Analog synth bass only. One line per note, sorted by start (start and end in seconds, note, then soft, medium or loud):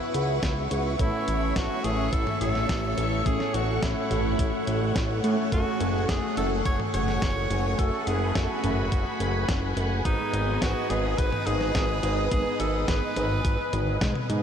0.15 0.40 C#2 medium
0.43 0.68 C#2 medium
0.71 0.96 C#2 loud
0.99 1.12 A1 loud
1.28 1.53 A1 medium
1.56 1.69 A1 medium
1.84 2.10 A1 loud
2.13 2.25 A1 medium
2.41 2.66 A1 medium
2.69 2.95 A1 medium
2.98 3.23 A1 loud
3.26 3.39 A1 loud
3.54 3.79 A1 medium
3.82 3.95 A1 medium
4.11 4.36 A1 loud
4.39 4.52 A1 medium
4.67 4.93 A1 medium
4.96 5.21 A1 loud
5.24 5.37 A2 loud
5.52 5.65 F#1 loud
5.81 6.06 F#1 medium
6.09 6.22 F#1 medium
6.37 6.63 F#1 loud
6.66 6.78 F#1 medium
6.94 7.19 F#1 medium
7.22 7.47 F#1 medium
7.51 7.76 F#1 loud
7.79 7.91 F#1 loud
8.07 8.32 F#1 medium
8.35 8.48 F#1 loud
8.64 8.89 F#1 loud
8.92 9.05 F#1 medium
9.20 9.46 F#1 medium
9.49 9.74 F#1 medium
9.77 10.02 F#1 loud
10.05 10.18 G#1 loud
10.33 10.59 G#1 medium
10.62 10.74 G#1 medium
10.90 11.15 G#1 loud
11.18 11.31 G#1 medium
11.47 11.72 G#1 medium
11.75 12.00 G#1 medium
12.03 12.29 G#1 loud
12.32 12.44 G#1 loud
12.60 12.85 G#1 medium
12.88 13.01 G#1 medium
13.16 13.42 G#1 loud
13.45 13.57 G#1 medium
13.73 13.98 G#1 medium
14.01 14.14 G#2 loud
14.30 14.43 G#2 loud